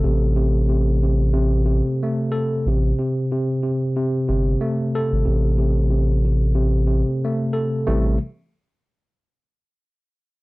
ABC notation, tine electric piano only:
X:1
M:4/4
L:1/8
Q:"Swing 16ths" 1/4=92
K:Am
V:1 name="Tine electric piano" clef=bass
[C,A,A] C, C, C, C, C, A, A | C, C, C, C, C, C, A, A | C, C, C, C, C, C, A, A | [C,E,G,A,] z6 z |]